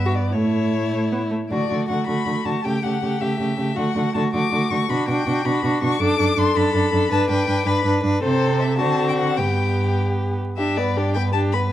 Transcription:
Already playing: G2 B3 E5
0.06 F#4
0.15 D5
0.33 A2 A3 E4 C#5
0.93 A3
1.12 B3
1.31 A3
1.51 D3 A3 F#4 D5
1.70 D3 A3 F#4
1.89 D3 A3 F#4 F#5
2.07 D3 A3 F#4 B5
2.26 D3 A3 F#4
2.45 D3 A3 F#4 A5
2.64 C#3 A3 G4 G5
2.83 C#3 A3 G4 F#5
3.03 C#3 A3 G4
3.21 C#3 A3 G4 E5
3.39 C#3 A3 G4
3.58 C#3 A3 G4
3.76 D3 A3 F#4 F#5
3.95 D3 A3 F#4
4.14 D3 A3 F#4 A5
4.34 D3 A3 F#4 D6
4.52 D3 A3 F#4
4.71 D3 A3 F#4 C#6
4.89 B2 D4 F#4 B5
5.08 B2 D4 F#4 G5
5.26 B2 D4 F#4
5.45 B2 D4 F#4 B5
5.63 B2 D4 F#4
5.82 B2 D4 F#4 C#6
6.00 F#2 D4 A4 D6
6.19 F#2 D4 A4
6.37 F#2 D4 A4 C6
6.56 F#2 D4 A4 B5
6.74 F#2 D4 A4
6.93 F#2 D4 A4
7.11 G2 D4 B4 A5
7.29 G2 D4 B4 G5
7.48 G2 D4 B4
7.65 G2 D4 B4 B5
7.84 G2 D4 B4
8.04 G2 D4 B4
8.22 C3 C4 A4 C5
8.60 E5
8.78 D3 C4 F#4 A5
9.09 G5
9.19 F#5
9.37 G2 B3 G4 G5
10.57 G2 D4 G4 E5
10.77 B3 B4 D5
10.97 D4 G4
11.14 B3 B4 G5
11.33 D4 G4 A5
11.52 B3 B4 B5

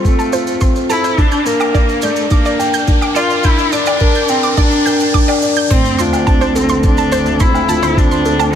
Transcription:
Already playing: C4 F4 A4 C5, riser
0.05 A3 C4, kick, shaker
0.19 A5, shaker
0.33 F4 C5, shaker
0.47 shaker
0.61 C4 C6, kick, shaker
0.76 shaker
0.90 E4 A4 A5, shaker
1.04 C5, shaker
1.18 D4, kick, shaker
1.31 G6, shaker
1.46 A#3 A#4, shaker
1.60 D6, low woodblock, shaker
1.74 D4 D5, kick, shaker
1.89 shaker
2.02 A3 D5 G6, shaker
2.16 shaker
2.31 A#3 D4 D6, kick, shaker
2.45 D5, shaker
2.59 G5, shaker
2.74 G6, shaker
2.87 D4, kick, shaker
3.02 D6, low woodblock, shaker
3.15 F4 A#4 D5, shaker
3.30 shaker
3.44 D4 E4 G6, kick, shaker
3.58 shaker
3.72 D4 D5 D6, shaker
3.86 D5, low woodblock, shaker
4.00 A#4, kick, shaker
4.15 G6, shaker
4.29 C4 G5, shaker
4.43 D6, shaker
4.57 D4 D5, kick, shaker
4.72 shaker
4.86 A#4 G6, low woodblock, shaker
5.00 shaker
5.14 D4 D6, kick, shaker
5.28 D5, low woodblock, shaker
5.42 D5, shaker
5.56 G6, shaker
5.70 D2 C4 C5, kick, crash, sub drop, shaker
5.85 shaker
5.99 D4 F4 C6, shaker
6.13 low woodblock, shaker
6.27 C4 A5, kick, shaker
6.41 C5, shaker
6.55 C4 A4, shaker
6.69 C6, shaker
6.83 C4 D4, kick, shaker
6.97 A5, shaker
7.12 C5, shaker
7.26 shaker
7.40 C4 E4 C6, kick, shaker
7.54 low woodblock, shaker
7.69 F4 A5, shaker
7.83 C5, shaker
7.97 C4 D4, kick, shaker
8.11 C6, shaker
8.25 A4, shaker
8.39 A5, low woodblock, shaker

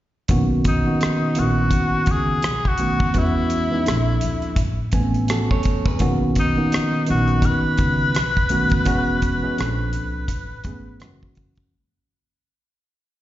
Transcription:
0.28 B1 D#3 A#3 B3 C#4 F#4, kick, closed hi-hat
0.64 D#4, kick, closed hi-hat
0.85 D#3 A#3 B3 C#4 F#4
1.01 cross-stick, closed hi-hat
1.35 A#1 D#3 A#3 B3 C#4 E4, closed hi-hat
1.40 F#4
1.44 F#4
1.71 kick, closed hi-hat
2.06 C#2, kick, closed hi-hat
2.11 G#4
2.42 B1, cross-stick, closed hi-hat
2.65 F#4, kick
2.77 D#3 A3 B3 C#4 F#4, closed hi-hat
3.00 kick
3.14 E2 E3 G#3 B3 C#4 E4 F#4, kick, closed hi-hat
3.50 closed hi-hat
3.71 E3 G#3 B3 C#4 D#4
3.85 A#1 F3 A#3 C4 D4 A4, cross-stick, closed hi-hat
4.21 D2, closed hi-hat
4.42 closed hi-hat
4.56 A1, kick, closed hi-hat
4.92 A1 E3 A3 B3 C4 G#5, kick, closed hi-hat
5.00 C#4
5.14 closed hi-hat
5.28 F#4 A4, cross-stick, closed hi-hat
5.51 A4 C#5, kick
5.63 kick, closed hi-hat
5.86 G#4 B4, kick
5.99 B1 D#3 A#3 B3 C#4 F#4, kick, closed hi-hat
6.35 D#4, kick, closed hi-hat
6.57 D#3 A#3 B3 C#4 D#4
6.72 cross-stick, closed hi-hat
7.07 A#1 D#3 F#3 B3 C#4 D#4 F#4, closed hi-hat
7.28 closed hi-hat
7.42 B4, kick, closed hi-hat
7.78 C#2, kick, closed hi-hat
8.15 B1, cross-stick, closed hi-hat
8.37 kick
8.49 D#3 A3 B3 C#4 F#4, closed hi-hat
8.70 kick, closed hi-hat
8.85 E1 E3 G#3 B3 C#4 F#4, kick, closed hi-hat
9.22 kick, closed hi-hat
9.43 E3 G#3 B3 C#4 F#4
9.58 A#1 A#2 F3 C4 C#4 A4, cross-stick, closed hi-hat
9.65 D4
9.93 C2, closed hi-hat
10.28 A1, kick, closed hi-hat
10.64 G#1 E3 A3 B3 C#4 G#4, kick, closed hi-hat
11.00 F#1 E3 G#3 A#3 C#4 F#4, cross-stick, closed hi-hat
11.23 kick
11.35 kick, closed hi-hat
11.55 kick, closed hi-hat

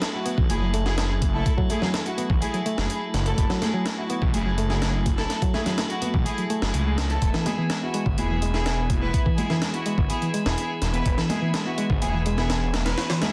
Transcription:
Already playing: F#3 E4 A4
0.02 A3, snare, closed hi-hat
0.14 A3 E4 F#4
0.26 B3, closed hi-hat
0.38 B1 E3, kick
0.50 F#1 A3 E4 G#4, closed hi-hat, high conga
0.62 F#3
0.74 A3, closed hi-hat
0.86 A3 E4 F#4 G#4, snare
0.98 snare, closed hi-hat
1.22 kick, closed hi-hat, high conga
1.34 A3 E4 A4
1.46 kick, closed hi-hat
1.58 F#3, kick
1.69 A3 E4 G#4, closed hi-hat, high conga
1.82 F#3, snare, low conga
1.94 A3, snare, closed hi-hat
2.06 A3 E4 F#4, closed hi-hat
2.18 B3, closed hi-hat
2.30 B1 E3, kick
2.42 A3 E4 G#4, closed hi-hat
2.54 F#3, closed hi-hat
2.66 A3, closed hi-hat
2.78 F#1 A3 E4 F#4 G#4, snare
2.90 closed hi-hat
3.14 F#1, snare, closed hi-hat
3.26 A3 E4 A4, closed hi-hat
3.38 F#1, kick, closed hi-hat
3.50 F#3, snare
3.62 A3 E4 G#4, snare, closed hi-hat, high conga
3.74 F#3
3.85 A3, snare, closed hi-hat
3.98 A3 E4 F#4
4.10 B3, closed hi-hat
4.22 B1 E3, kick
4.34 F#1 A3 E4 G#4, closed hi-hat, high conga
4.46 F#3
4.58 A3, closed hi-hat
4.70 A3 E4 F#4 G#4, snare
4.82 snare, closed hi-hat
5.06 kick, closed hi-hat, high conga
5.18 A3 E4 A4, snare
5.30 snare, closed hi-hat
5.42 F#3, kick, closed hi-hat
5.54 A3 E4 G#4, snare, high conga
5.66 F#3, snare, closed hi-hat, low conga
5.78 A3, snare, closed hi-hat
5.90 A3 E4 F#4, closed hi-hat
6.02 B3, closed hi-hat, high conga
6.14 B1 E3, kick
6.26 A3 E4 G#4, closed hi-hat
6.38 F#3, closed hi-hat
6.50 A3, closed hi-hat
6.62 F#1 A3 E4 F#4 G#4, snare
6.74 C#2, closed hi-hat
6.98 snare, closed hi-hat
7.10 A3 E4 A4, closed hi-hat
7.22 E1 E3 B3 G#4, kick, closed hi-hat
7.34 E3, snare
7.46 G#3 B3 E4 G#4, snare, closed hi-hat, high conga
7.58 E3
7.70 G#3, snare, closed hi-hat
7.82 B3 E4 F#4
7.94 G#3, closed hi-hat
8.06 G#1 D3, kick
8.18 E1 B3 E4 G#4, closed hi-hat, high conga
8.30 E3
8.42 G#3, closed hi-hat
8.54 B3 E4 G#4, snare
8.66 snare, closed hi-hat
8.90 kick, closed hi-hat, high conga
9.02 B3 E4 B4
9.14 kick, closed hi-hat
9.26 E3, kick
9.38 G#3 B3 E4 G#4, closed hi-hat, high conga
9.50 E3, snare, low conga
9.62 G#3, snare, closed hi-hat
9.74 B3 E4 F#4, closed hi-hat
9.86 G#3, closed hi-hat
9.98 G#1 D3, kick
10.10 B3 E4 G#4, closed hi-hat
10.22 E3, closed hi-hat
10.34 G#3, closed hi-hat
10.46 E1 B3 E4 G#4, snare
10.58 closed hi-hat
10.82 E1, snare, closed hi-hat
10.94 B3 E4 B4, closed hi-hat
11.06 E1, kick, closed hi-hat
11.18 E3, snare
11.29 G#3 B3 E4 G#4, snare, closed hi-hat, high conga
11.42 E3
11.54 G#3, snare, closed hi-hat
11.66 B3 E4 F#4
11.78 G#3, closed hi-hat
11.90 G#1 D3, kick
12.01 E1 B3 E4 G#4, closed hi-hat, high conga
12.14 E3
12.26 G#3, closed hi-hat
12.38 B3 E4 G#4, snare
12.50 snare, closed hi-hat
12.74 snare, closed hi-hat, high conga
12.86 B3 E4 B4, snare, closed hi-hat
12.98 snare, closed hi-hat
13.10 E3, snare, closed hi-hat
13.22 G#3 B3 E4 G#4, snare, closed hi-hat, high conga

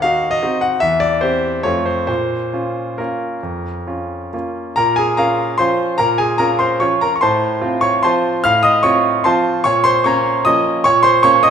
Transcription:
Already playing: D#2 F#5
0.02 D#4 F#4 F5
0.31 D#5
0.43 C4 D#4 F#4
0.61 F#5
0.80 E2 E5
1.00 D5
1.21 C4 G4 C5
1.63 F2 A3 C4 F4 C#5
1.85 C5
2.07 A#2 C5
2.53 C#4 F4
2.98 A#3 C#4 F4 A#4
3.43 F2
3.87 C#4 F4
4.33 A#3 C#4 F4
4.76 A#2 A#4 A#5
4.96 G#4 G#5
5.17 C#4 F4 A#4 F5 A#5
5.58 F3 C#4 F4 C5 C6
5.98 A#2 A#4 A#5
6.18 G#4 G#5
6.38 C#4 F4 A#4 A#5
6.59 C5 C6
6.80 F3 C#4 F4 C#5 C#6
7.01 A#4 A#5
7.16 C#6
7.21 A2 C5 A5 C6
7.61 C4 F4
7.81 C#5 C#6
8.03 F3 C4 F4 C5 A5 C6
8.44 A2 F5 F6
8.63 D#5 D#6
8.83 C4 F4 C#5 C#6
9.24 F3 C4 F4 C5 A5 C6
9.64 A#2 C#5 C#6
9.84 C5 C6
10.04 A#3 C#4 C#5 A#5 C#6
10.45 F3 A#3 C#4 D#5 D#6
10.84 A#2 C#5 C#6
11.03 C5 C6
11.23 A#3 C#4 C#5 C#6
11.43 D#5 D#6

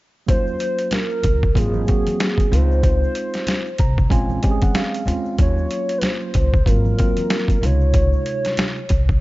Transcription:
0.26 D#2 F#3 A#3 C#4 F4 C5, kick, closed hi-hat, shaker
0.47 shaker
0.59 closed hi-hat, shaker
0.78 closed hi-hat, shaker
0.91 A#4, snare, closed hi-hat, low conga, shaker
1.10 shaker
1.23 C#2, kick, closed hi-hat, low conga, shaker
1.43 kick, shaker
1.55 G#1 F#3 A#3 C4 F4 G#4, kick, closed hi-hat, shaker
1.74 high conga, shaker
1.86 F#3 A#3 C4 F#4, kick, closed hi-hat, shaker
2.07 closed hi-hat, high conga, shaker
2.19 snare, closed hi-hat, shaker
2.38 kick, closed hi-hat, shaker
2.50 C#2 G#3 C4 D#4 F4 C5, closed hi-hat, low conga, shaker
2.72 shaker
2.83 kick, closed hi-hat, shaker
3.03 shaker
3.15 closed hi-hat, shaker
3.34 snare, closed hi-hat, shaker
3.47 snare, closed hi-hat, low conga, shaker
3.66 shaker
3.79 C2 A#5, kick, closed hi-hat, low conga, shaker
3.98 kick, shaker
4.10 A#1 G#3 C4 C#4 F4 G#5, kick, closed hi-hat, shaker
4.30 high conga, shaker
4.42 G#3 C4 C#4 G4, kick, closed hi-hat
4.51 G#4
4.62 F#5, kick, closed hi-hat, high conga, shaker
4.74 F5, snare, closed hi-hat, shaker
4.93 closed hi-hat, shaker
5.05 D#2 G#3 C4 C#4 F4, closed hi-hat, low conga, shaker
5.25 shaker
5.38 D#2 F#3 A#3 F4 C#5, kick, closed hi-hat, shaker
5.58 shaker
5.69 closed hi-hat, shaker
5.89 closed hi-hat, shaker
5.98 B4, closed hi-hat
6.02 C5, snare, low conga, shaker
6.21 shaker
6.34 C#2, kick, closed hi-hat, low conga, shaker
6.54 kick, shaker
6.65 G#1 F#3 A#3 C4 F4 A#4, kick, closed hi-hat, shaker
6.85 high conga, shaker
6.97 F#3 A#3 C4 F4, kick, closed hi-hat
7.17 closed hi-hat, high conga, shaker
7.30 snare, closed hi-hat
7.48 kick, closed hi-hat, shaker
7.61 C#2 C3 G#3 D#4 F4 C#5, closed hi-hat, low conga, shaker
7.81 shaker
7.93 kick, closed hi-hat, shaker
8.13 shaker
8.26 closed hi-hat, shaker
8.45 snare, closed hi-hat, shaker
8.57 snare, closed hi-hat, low conga, shaker
8.76 shaker
8.89 C2, kick, closed hi-hat, low conga, shaker
9.09 kick, shaker

